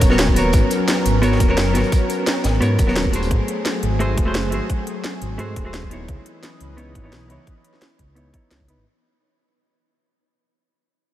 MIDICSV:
0, 0, Header, 1, 5, 480
1, 0, Start_track
1, 0, Key_signature, 5, "minor"
1, 0, Tempo, 346821
1, 739, Time_signature, 4, 2, 24, 8
1, 15416, End_track
2, 0, Start_track
2, 0, Title_t, "Hollow-body jazz guitar"
2, 0, Program_c, 0, 26
2, 129, Note_on_c, 0, 59, 97
2, 140, Note_on_c, 0, 66, 89
2, 150, Note_on_c, 0, 70, 97
2, 160, Note_on_c, 0, 73, 114
2, 455, Note_off_c, 0, 59, 0
2, 470, Note_off_c, 0, 66, 0
2, 472, Note_on_c, 0, 59, 78
2, 475, Note_off_c, 0, 70, 0
2, 480, Note_off_c, 0, 73, 0
2, 493, Note_on_c, 0, 66, 70
2, 514, Note_on_c, 0, 70, 69
2, 533, Note_on_c, 0, 73, 82
2, 1658, Note_off_c, 0, 59, 0
2, 1668, Note_off_c, 0, 66, 0
2, 1679, Note_off_c, 0, 70, 0
2, 1685, Note_on_c, 0, 59, 98
2, 1688, Note_off_c, 0, 73, 0
2, 1694, Note_on_c, 0, 66, 80
2, 1705, Note_on_c, 0, 70, 83
2, 1714, Note_on_c, 0, 73, 104
2, 2032, Note_off_c, 0, 59, 0
2, 2037, Note_off_c, 0, 66, 0
2, 2042, Note_off_c, 0, 70, 0
2, 2047, Note_off_c, 0, 73, 0
2, 2052, Note_on_c, 0, 59, 98
2, 2062, Note_on_c, 0, 66, 94
2, 2072, Note_on_c, 0, 70, 89
2, 2082, Note_on_c, 0, 73, 109
2, 2371, Note_off_c, 0, 59, 0
2, 2387, Note_on_c, 0, 59, 74
2, 2391, Note_off_c, 0, 66, 0
2, 2396, Note_off_c, 0, 70, 0
2, 2401, Note_off_c, 0, 73, 0
2, 2409, Note_on_c, 0, 66, 69
2, 2430, Note_on_c, 0, 70, 67
2, 2451, Note_on_c, 0, 73, 82
2, 3576, Note_off_c, 0, 59, 0
2, 3586, Note_off_c, 0, 66, 0
2, 3597, Note_off_c, 0, 70, 0
2, 3605, Note_on_c, 0, 59, 92
2, 3608, Note_off_c, 0, 73, 0
2, 3614, Note_on_c, 0, 66, 80
2, 3624, Note_on_c, 0, 70, 85
2, 3636, Note_on_c, 0, 73, 98
2, 3952, Note_off_c, 0, 59, 0
2, 3956, Note_off_c, 0, 66, 0
2, 3961, Note_off_c, 0, 70, 0
2, 3967, Note_off_c, 0, 73, 0
2, 3968, Note_on_c, 0, 59, 99
2, 3979, Note_on_c, 0, 66, 90
2, 3989, Note_on_c, 0, 70, 89
2, 3999, Note_on_c, 0, 73, 104
2, 4302, Note_off_c, 0, 59, 0
2, 4307, Note_on_c, 0, 57, 70
2, 4309, Note_off_c, 0, 66, 0
2, 4314, Note_off_c, 0, 70, 0
2, 4319, Note_off_c, 0, 73, 0
2, 4328, Note_on_c, 0, 66, 64
2, 4348, Note_on_c, 0, 68, 67
2, 4369, Note_on_c, 0, 72, 81
2, 5495, Note_off_c, 0, 57, 0
2, 5506, Note_off_c, 0, 66, 0
2, 5516, Note_off_c, 0, 68, 0
2, 5524, Note_on_c, 0, 57, 92
2, 5526, Note_off_c, 0, 72, 0
2, 5533, Note_on_c, 0, 66, 81
2, 5544, Note_on_c, 0, 68, 83
2, 5553, Note_on_c, 0, 72, 102
2, 5868, Note_off_c, 0, 57, 0
2, 5876, Note_off_c, 0, 66, 0
2, 5881, Note_off_c, 0, 68, 0
2, 5885, Note_on_c, 0, 57, 98
2, 5886, Note_off_c, 0, 72, 0
2, 5894, Note_on_c, 0, 66, 88
2, 5906, Note_on_c, 0, 68, 90
2, 5916, Note_on_c, 0, 72, 109
2, 6209, Note_off_c, 0, 57, 0
2, 6226, Note_on_c, 0, 57, 73
2, 6227, Note_off_c, 0, 66, 0
2, 6232, Note_off_c, 0, 68, 0
2, 6238, Note_off_c, 0, 72, 0
2, 6247, Note_on_c, 0, 66, 64
2, 6266, Note_on_c, 0, 68, 69
2, 6286, Note_on_c, 0, 72, 79
2, 7415, Note_off_c, 0, 57, 0
2, 7425, Note_off_c, 0, 66, 0
2, 7435, Note_off_c, 0, 68, 0
2, 7445, Note_off_c, 0, 72, 0
2, 7445, Note_on_c, 0, 57, 91
2, 7456, Note_on_c, 0, 66, 82
2, 7464, Note_on_c, 0, 68, 84
2, 7475, Note_on_c, 0, 72, 101
2, 7792, Note_off_c, 0, 57, 0
2, 7797, Note_off_c, 0, 66, 0
2, 7801, Note_off_c, 0, 68, 0
2, 7807, Note_off_c, 0, 72, 0
2, 7812, Note_on_c, 0, 57, 97
2, 7822, Note_on_c, 0, 66, 87
2, 7833, Note_on_c, 0, 68, 91
2, 7840, Note_on_c, 0, 72, 108
2, 8145, Note_off_c, 0, 57, 0
2, 8150, Note_off_c, 0, 66, 0
2, 8152, Note_on_c, 0, 59, 73
2, 8156, Note_off_c, 0, 68, 0
2, 8160, Note_off_c, 0, 72, 0
2, 8173, Note_on_c, 0, 63, 70
2, 8193, Note_on_c, 0, 64, 70
2, 8213, Note_on_c, 0, 73, 82
2, 9338, Note_off_c, 0, 59, 0
2, 9348, Note_off_c, 0, 63, 0
2, 9358, Note_off_c, 0, 64, 0
2, 9367, Note_on_c, 0, 59, 89
2, 9368, Note_off_c, 0, 73, 0
2, 9377, Note_on_c, 0, 63, 83
2, 9387, Note_on_c, 0, 64, 81
2, 9398, Note_on_c, 0, 73, 101
2, 9713, Note_off_c, 0, 59, 0
2, 9718, Note_off_c, 0, 63, 0
2, 9723, Note_off_c, 0, 64, 0
2, 9728, Note_off_c, 0, 73, 0
2, 9728, Note_on_c, 0, 59, 94
2, 9737, Note_on_c, 0, 63, 93
2, 9750, Note_on_c, 0, 64, 92
2, 9759, Note_on_c, 0, 73, 110
2, 10050, Note_off_c, 0, 59, 0
2, 10067, Note_on_c, 0, 59, 74
2, 10068, Note_off_c, 0, 63, 0
2, 10075, Note_off_c, 0, 64, 0
2, 10079, Note_off_c, 0, 73, 0
2, 10088, Note_on_c, 0, 63, 68
2, 10107, Note_on_c, 0, 64, 70
2, 10128, Note_on_c, 0, 73, 79
2, 11255, Note_off_c, 0, 59, 0
2, 11266, Note_off_c, 0, 63, 0
2, 11275, Note_off_c, 0, 64, 0
2, 11283, Note_on_c, 0, 59, 91
2, 11286, Note_off_c, 0, 73, 0
2, 11293, Note_on_c, 0, 63, 80
2, 11303, Note_on_c, 0, 64, 80
2, 11313, Note_on_c, 0, 73, 96
2, 11508, Note_off_c, 0, 59, 0
2, 11513, Note_off_c, 0, 63, 0
2, 11518, Note_off_c, 0, 64, 0
2, 11523, Note_off_c, 0, 73, 0
2, 11526, Note_on_c, 0, 59, 81
2, 11535, Note_on_c, 0, 63, 71
2, 11546, Note_on_c, 0, 64, 75
2, 11556, Note_on_c, 0, 73, 91
2, 11985, Note_off_c, 0, 59, 0
2, 11989, Note_off_c, 0, 63, 0
2, 11995, Note_off_c, 0, 64, 0
2, 12000, Note_off_c, 0, 73, 0
2, 12005, Note_on_c, 0, 59, 78
2, 12016, Note_on_c, 0, 63, 69
2, 12028, Note_on_c, 0, 64, 66
2, 12036, Note_on_c, 0, 71, 82
2, 12238, Note_off_c, 0, 59, 0
2, 12244, Note_off_c, 0, 63, 0
2, 12250, Note_off_c, 0, 64, 0
2, 12254, Note_off_c, 0, 71, 0
2, 15416, End_track
3, 0, Start_track
3, 0, Title_t, "Analog synth pad"
3, 0, Program_c, 1, 89
3, 0, Note_on_c, 1, 54, 83
3, 0, Note_on_c, 1, 59, 80
3, 0, Note_on_c, 1, 61, 78
3, 0, Note_on_c, 1, 70, 91
3, 4523, Note_off_c, 1, 59, 0
3, 4524, Note_off_c, 1, 54, 0
3, 4524, Note_off_c, 1, 61, 0
3, 4525, Note_off_c, 1, 70, 0
3, 4582, Note_on_c, 1, 57, 73
3, 4582, Note_on_c, 1, 68, 90
3, 4583, Note_on_c, 1, 60, 76
3, 4584, Note_on_c, 1, 54, 83
3, 8382, Note_off_c, 1, 57, 0
3, 8382, Note_off_c, 1, 68, 0
3, 8383, Note_off_c, 1, 54, 0
3, 8383, Note_off_c, 1, 60, 0
3, 8419, Note_on_c, 1, 61, 74
3, 8420, Note_on_c, 1, 75, 70
3, 8421, Note_on_c, 1, 52, 81
3, 8421, Note_on_c, 1, 71, 89
3, 12221, Note_off_c, 1, 61, 0
3, 12221, Note_off_c, 1, 75, 0
3, 12222, Note_off_c, 1, 52, 0
3, 12222, Note_off_c, 1, 71, 0
3, 15416, End_track
4, 0, Start_track
4, 0, Title_t, "Detuned saw bass"
4, 0, Program_c, 2, 39
4, 18, Note_on_c, 2, 27, 87
4, 720, Note_off_c, 2, 27, 0
4, 738, Note_on_c, 2, 32, 101
4, 851, Note_off_c, 2, 32, 0
4, 1457, Note_on_c, 2, 32, 102
4, 1920, Note_off_c, 2, 32, 0
4, 1940, Note_on_c, 2, 27, 110
4, 2156, Note_off_c, 2, 27, 0
4, 2180, Note_on_c, 2, 30, 98
4, 2418, Note_on_c, 2, 32, 99
4, 2439, Note_off_c, 2, 30, 0
4, 2531, Note_off_c, 2, 32, 0
4, 3379, Note_on_c, 2, 32, 99
4, 3607, Note_off_c, 2, 32, 0
4, 3615, Note_on_c, 2, 44, 102
4, 3834, Note_off_c, 2, 44, 0
4, 3859, Note_on_c, 2, 27, 90
4, 4561, Note_off_c, 2, 27, 0
4, 4578, Note_on_c, 2, 32, 98
4, 4691, Note_off_c, 2, 32, 0
4, 5296, Note_on_c, 2, 32, 99
4, 5759, Note_off_c, 2, 32, 0
4, 5777, Note_on_c, 2, 27, 108
4, 5995, Note_off_c, 2, 27, 0
4, 6016, Note_on_c, 2, 30, 104
4, 6257, Note_on_c, 2, 32, 92
4, 6278, Note_off_c, 2, 30, 0
4, 6370, Note_off_c, 2, 32, 0
4, 7218, Note_on_c, 2, 32, 95
4, 7452, Note_off_c, 2, 32, 0
4, 7460, Note_on_c, 2, 44, 100
4, 7677, Note_off_c, 2, 44, 0
4, 7700, Note_on_c, 2, 27, 84
4, 8401, Note_off_c, 2, 27, 0
4, 8421, Note_on_c, 2, 37, 98
4, 8532, Note_off_c, 2, 37, 0
4, 9142, Note_on_c, 2, 37, 95
4, 9602, Note_off_c, 2, 37, 0
4, 9619, Note_on_c, 2, 32, 101
4, 9836, Note_off_c, 2, 32, 0
4, 9859, Note_on_c, 2, 35, 95
4, 10097, Note_on_c, 2, 37, 97
4, 10118, Note_off_c, 2, 35, 0
4, 10210, Note_off_c, 2, 37, 0
4, 11058, Note_on_c, 2, 37, 96
4, 11520, Note_off_c, 2, 37, 0
4, 11776, Note_on_c, 2, 37, 80
4, 12123, Note_off_c, 2, 37, 0
4, 12140, Note_on_c, 2, 32, 88
4, 12246, Note_off_c, 2, 32, 0
4, 15416, End_track
5, 0, Start_track
5, 0, Title_t, "Drums"
5, 19, Note_on_c, 9, 36, 106
5, 20, Note_on_c, 9, 42, 70
5, 21, Note_off_c, 9, 42, 0
5, 21, Note_on_c, 9, 42, 91
5, 154, Note_on_c, 9, 38, 38
5, 157, Note_off_c, 9, 36, 0
5, 159, Note_off_c, 9, 42, 0
5, 261, Note_off_c, 9, 38, 0
5, 261, Note_on_c, 9, 38, 127
5, 261, Note_on_c, 9, 42, 78
5, 265, Note_off_c, 9, 38, 0
5, 265, Note_off_c, 9, 42, 0
5, 265, Note_on_c, 9, 38, 119
5, 265, Note_on_c, 9, 42, 83
5, 384, Note_on_c, 9, 36, 63
5, 403, Note_off_c, 9, 38, 0
5, 403, Note_off_c, 9, 42, 0
5, 503, Note_on_c, 9, 42, 89
5, 504, Note_off_c, 9, 42, 0
5, 504, Note_on_c, 9, 42, 68
5, 522, Note_off_c, 9, 36, 0
5, 643, Note_off_c, 9, 42, 0
5, 730, Note_on_c, 9, 42, 82
5, 739, Note_on_c, 9, 36, 117
5, 743, Note_off_c, 9, 42, 0
5, 743, Note_on_c, 9, 42, 69
5, 878, Note_off_c, 9, 36, 0
5, 881, Note_off_c, 9, 42, 0
5, 975, Note_on_c, 9, 42, 64
5, 982, Note_off_c, 9, 42, 0
5, 982, Note_on_c, 9, 42, 90
5, 1120, Note_off_c, 9, 42, 0
5, 1222, Note_on_c, 9, 38, 126
5, 1222, Note_on_c, 9, 42, 73
5, 1223, Note_off_c, 9, 38, 0
5, 1223, Note_on_c, 9, 38, 104
5, 1224, Note_off_c, 9, 42, 0
5, 1224, Note_on_c, 9, 42, 78
5, 1341, Note_off_c, 9, 38, 0
5, 1341, Note_on_c, 9, 38, 48
5, 1362, Note_off_c, 9, 42, 0
5, 1462, Note_on_c, 9, 42, 93
5, 1464, Note_off_c, 9, 42, 0
5, 1464, Note_on_c, 9, 42, 66
5, 1479, Note_off_c, 9, 38, 0
5, 1602, Note_off_c, 9, 42, 0
5, 1701, Note_on_c, 9, 42, 68
5, 1703, Note_off_c, 9, 42, 0
5, 1703, Note_on_c, 9, 42, 83
5, 1827, Note_on_c, 9, 38, 52
5, 1841, Note_off_c, 9, 42, 0
5, 1939, Note_on_c, 9, 42, 64
5, 1940, Note_on_c, 9, 36, 118
5, 1941, Note_off_c, 9, 42, 0
5, 1941, Note_on_c, 9, 42, 83
5, 1965, Note_off_c, 9, 38, 0
5, 2078, Note_off_c, 9, 36, 0
5, 2079, Note_off_c, 9, 42, 0
5, 2181, Note_on_c, 9, 38, 123
5, 2181, Note_on_c, 9, 42, 78
5, 2182, Note_off_c, 9, 38, 0
5, 2182, Note_on_c, 9, 38, 109
5, 2187, Note_off_c, 9, 42, 0
5, 2187, Note_on_c, 9, 42, 92
5, 2321, Note_off_c, 9, 38, 0
5, 2325, Note_off_c, 9, 42, 0
5, 2418, Note_on_c, 9, 42, 63
5, 2422, Note_off_c, 9, 42, 0
5, 2422, Note_on_c, 9, 42, 89
5, 2426, Note_on_c, 9, 38, 54
5, 2544, Note_off_c, 9, 42, 0
5, 2544, Note_on_c, 9, 42, 46
5, 2564, Note_off_c, 9, 38, 0
5, 2661, Note_off_c, 9, 42, 0
5, 2661, Note_on_c, 9, 36, 119
5, 2661, Note_on_c, 9, 42, 70
5, 2668, Note_off_c, 9, 42, 0
5, 2668, Note_on_c, 9, 42, 83
5, 2799, Note_off_c, 9, 36, 0
5, 2807, Note_off_c, 9, 42, 0
5, 2902, Note_on_c, 9, 42, 86
5, 2910, Note_off_c, 9, 42, 0
5, 2910, Note_on_c, 9, 42, 63
5, 3048, Note_off_c, 9, 42, 0
5, 3133, Note_on_c, 9, 42, 69
5, 3135, Note_on_c, 9, 38, 93
5, 3142, Note_off_c, 9, 38, 0
5, 3142, Note_off_c, 9, 42, 0
5, 3142, Note_on_c, 9, 38, 113
5, 3142, Note_on_c, 9, 42, 73
5, 3281, Note_off_c, 9, 38, 0
5, 3281, Note_off_c, 9, 42, 0
5, 3376, Note_on_c, 9, 38, 94
5, 3376, Note_on_c, 9, 42, 79
5, 3382, Note_off_c, 9, 42, 0
5, 3382, Note_on_c, 9, 42, 86
5, 3506, Note_off_c, 9, 38, 0
5, 3506, Note_on_c, 9, 38, 42
5, 3521, Note_off_c, 9, 42, 0
5, 3621, Note_on_c, 9, 42, 68
5, 3627, Note_off_c, 9, 42, 0
5, 3627, Note_on_c, 9, 42, 75
5, 3644, Note_off_c, 9, 38, 0
5, 3766, Note_off_c, 9, 42, 0
5, 3854, Note_on_c, 9, 42, 65
5, 3860, Note_on_c, 9, 36, 116
5, 3861, Note_off_c, 9, 42, 0
5, 3861, Note_on_c, 9, 42, 82
5, 3983, Note_on_c, 9, 38, 45
5, 3998, Note_off_c, 9, 36, 0
5, 3999, Note_off_c, 9, 42, 0
5, 4100, Note_off_c, 9, 38, 0
5, 4100, Note_on_c, 9, 38, 122
5, 4100, Note_on_c, 9, 42, 73
5, 4224, Note_on_c, 9, 36, 61
5, 4238, Note_off_c, 9, 38, 0
5, 4238, Note_off_c, 9, 42, 0
5, 4335, Note_on_c, 9, 42, 53
5, 4338, Note_off_c, 9, 42, 0
5, 4338, Note_on_c, 9, 42, 82
5, 4362, Note_off_c, 9, 36, 0
5, 4465, Note_off_c, 9, 42, 0
5, 4465, Note_on_c, 9, 42, 83
5, 4579, Note_on_c, 9, 36, 111
5, 4581, Note_off_c, 9, 42, 0
5, 4581, Note_on_c, 9, 42, 73
5, 4717, Note_off_c, 9, 36, 0
5, 4719, Note_off_c, 9, 42, 0
5, 4820, Note_on_c, 9, 42, 85
5, 4958, Note_off_c, 9, 42, 0
5, 5059, Note_on_c, 9, 38, 110
5, 5059, Note_on_c, 9, 42, 71
5, 5197, Note_off_c, 9, 38, 0
5, 5197, Note_off_c, 9, 42, 0
5, 5299, Note_on_c, 9, 42, 85
5, 5437, Note_off_c, 9, 42, 0
5, 5540, Note_on_c, 9, 42, 70
5, 5679, Note_off_c, 9, 42, 0
5, 5778, Note_on_c, 9, 36, 108
5, 5779, Note_on_c, 9, 42, 84
5, 5916, Note_off_c, 9, 36, 0
5, 5918, Note_off_c, 9, 42, 0
5, 6019, Note_on_c, 9, 38, 120
5, 6019, Note_on_c, 9, 42, 77
5, 6157, Note_off_c, 9, 38, 0
5, 6157, Note_off_c, 9, 42, 0
5, 6258, Note_on_c, 9, 42, 84
5, 6397, Note_off_c, 9, 42, 0
5, 6499, Note_on_c, 9, 36, 107
5, 6499, Note_on_c, 9, 42, 70
5, 6637, Note_off_c, 9, 36, 0
5, 6638, Note_off_c, 9, 42, 0
5, 6739, Note_on_c, 9, 42, 90
5, 6878, Note_off_c, 9, 42, 0
5, 6979, Note_on_c, 9, 38, 108
5, 6979, Note_on_c, 9, 42, 75
5, 7117, Note_off_c, 9, 38, 0
5, 7117, Note_off_c, 9, 42, 0
5, 7219, Note_on_c, 9, 42, 93
5, 7357, Note_off_c, 9, 42, 0
5, 7459, Note_on_c, 9, 42, 73
5, 7598, Note_off_c, 9, 42, 0
5, 7699, Note_on_c, 9, 42, 91
5, 7700, Note_on_c, 9, 36, 97
5, 7838, Note_off_c, 9, 42, 0
5, 7839, Note_off_c, 9, 36, 0
5, 7941, Note_on_c, 9, 38, 111
5, 7941, Note_on_c, 9, 42, 74
5, 8065, Note_on_c, 9, 36, 54
5, 8079, Note_off_c, 9, 38, 0
5, 8079, Note_off_c, 9, 42, 0
5, 8182, Note_on_c, 9, 42, 85
5, 8204, Note_off_c, 9, 36, 0
5, 8320, Note_off_c, 9, 42, 0
5, 8421, Note_on_c, 9, 36, 98
5, 8422, Note_on_c, 9, 42, 68
5, 8559, Note_off_c, 9, 36, 0
5, 8561, Note_off_c, 9, 42, 0
5, 8662, Note_on_c, 9, 42, 89
5, 8800, Note_off_c, 9, 42, 0
5, 8903, Note_on_c, 9, 38, 99
5, 8903, Note_on_c, 9, 42, 76
5, 9042, Note_off_c, 9, 38, 0
5, 9042, Note_off_c, 9, 42, 0
5, 9142, Note_on_c, 9, 42, 96
5, 9280, Note_off_c, 9, 42, 0
5, 9383, Note_on_c, 9, 42, 75
5, 9522, Note_off_c, 9, 42, 0
5, 9620, Note_on_c, 9, 36, 98
5, 9623, Note_on_c, 9, 42, 90
5, 9759, Note_off_c, 9, 36, 0
5, 9761, Note_off_c, 9, 42, 0
5, 9863, Note_on_c, 9, 38, 109
5, 9863, Note_on_c, 9, 42, 80
5, 10002, Note_off_c, 9, 38, 0
5, 10002, Note_off_c, 9, 42, 0
5, 10102, Note_on_c, 9, 42, 90
5, 10240, Note_off_c, 9, 42, 0
5, 10339, Note_on_c, 9, 36, 104
5, 10342, Note_on_c, 9, 42, 75
5, 10478, Note_off_c, 9, 36, 0
5, 10480, Note_off_c, 9, 42, 0
5, 10580, Note_on_c, 9, 42, 90
5, 10704, Note_on_c, 9, 38, 34
5, 10718, Note_off_c, 9, 42, 0
5, 10819, Note_off_c, 9, 38, 0
5, 10819, Note_on_c, 9, 38, 105
5, 10819, Note_on_c, 9, 42, 80
5, 10958, Note_off_c, 9, 38, 0
5, 10958, Note_off_c, 9, 42, 0
5, 11058, Note_on_c, 9, 36, 57
5, 11060, Note_on_c, 9, 42, 92
5, 11197, Note_off_c, 9, 36, 0
5, 11198, Note_off_c, 9, 42, 0
5, 11300, Note_on_c, 9, 42, 73
5, 11438, Note_off_c, 9, 42, 0
5, 11538, Note_on_c, 9, 36, 105
5, 11540, Note_on_c, 9, 42, 90
5, 11676, Note_off_c, 9, 36, 0
5, 11678, Note_off_c, 9, 42, 0
5, 11780, Note_on_c, 9, 38, 112
5, 11780, Note_on_c, 9, 42, 82
5, 11903, Note_on_c, 9, 36, 59
5, 11919, Note_off_c, 9, 38, 0
5, 11919, Note_off_c, 9, 42, 0
5, 12019, Note_on_c, 9, 42, 91
5, 12041, Note_off_c, 9, 36, 0
5, 12157, Note_off_c, 9, 42, 0
5, 15416, End_track
0, 0, End_of_file